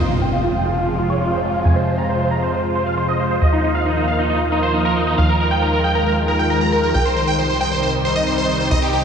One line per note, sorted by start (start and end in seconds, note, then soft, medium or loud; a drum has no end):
0.00 1.63 F2 medium
0.00 3.38 C3 medium
0.00 3.38 F3 medium
0.00 3.38 G#3 medium
0.00 6.90 F4 medium
0.00 impact medium
0.11 0.18 F4 medium
0.22 0.29 G5 medium
0.33 0.40 F4 medium
0.44 0.51 F4 medium
0.55 0.62 G5 medium
0.66 0.73 F4 medium
0.77 0.85 F4 medium
0.99 1.07 F4 medium
1.10 1.18 C#5 medium
1.21 1.29 F4 medium
1.32 1.40 C5 medium
1.43 1.51 F4 medium
1.54 1.62 F4 medium
1.65 3.39 F2 medium
1.65 1.73 G#5 medium
1.76 1.84 C5 medium
1.87 1.95 C5 medium
1.98 2.06 A#5 medium
2.09 2.17 C5 medium
2.20 2.28 C5 medium
2.31 2.39 A#5 medium
2.42 2.50 C5 medium
2.53 2.61 C5 medium
2.75 2.83 C5 medium
2.86 2.94 F5 medium
2.97 3.05 C5 medium
3.08 3.16 D#5 medium
3.20 3.27 C5 medium
3.31 3.38 C5 medium
3.41 5.16 D#2 medium
3.41 9.04 D#3 medium
3.41 6.91 F3 medium
3.41 5.16 A#3 medium
3.41 3.49 D#5 medium
3.53 3.60 D#4 medium
3.64 3.71 D#4 medium
3.75 3.82 F5 medium
3.86 3.94 D#4 medium
3.97 4.05 D#4 medium
4.08 4.15 F5 medium
4.19 4.26 D#4 medium
4.30 4.37 D#4 medium
4.52 4.60 D#4 medium
4.63 4.71 C5 medium
4.74 4.82 D#4 medium
4.85 4.93 A#4 medium
4.96 5.04 D#4 medium
5.07 5.15 D#4 medium
5.18 6.92 D#2 medium
5.18 6.93 G#3 medium
5.18 5.26 F5 medium
5.29 5.37 A#4 medium
5.40 5.48 A#4 medium
5.51 5.59 G5 medium
5.62 5.70 A#4 medium
5.73 5.81 A#4 medium
5.84 5.92 G5 medium
5.95 6.03 A#4 medium
6.06 6.14 A#4 medium
6.28 6.36 A#4 medium
6.39 6.47 G5 medium
6.50 6.58 A#4 medium
6.61 6.69 A#5 medium
6.72 6.80 A#4 medium
6.83 6.91 A#4 medium
6.94 8.69 C2 medium
6.94 9.04 C3 medium
6.94 9.04 G3 medium
6.94 9.04 D#4 medium
6.94 7.02 G5 medium
7.05 7.13 C5 medium
7.16 7.24 C5 medium
7.27 7.35 G5 medium
7.39 7.46 C5 medium
7.50 7.57 C5 medium
7.61 7.68 G5 medium
7.72 7.79 C5 medium
7.83 7.90 C5 medium
8.05 8.13 C5 medium
8.16 8.23 D#5 medium
8.27 8.35 C5 medium
8.38 8.46 C5 medium
8.49 8.57 C5 medium
8.60 8.68 C5 medium
8.71 9.04 C2 medium
8.71 8.79 D#5 medium
8.82 8.90 G4 medium
8.93 9.01 G4 medium